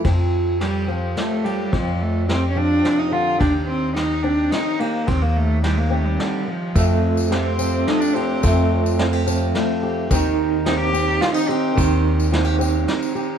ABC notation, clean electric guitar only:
X:1
M:3/4
L:1/8
Q:1/4=108
K:Fmix
V:1 name="Clean electric guitar"
z6 | z6 | z6 | z6 |
A,2 C4 | A,2 C4 | E,2 C4 | E,2 C4 |]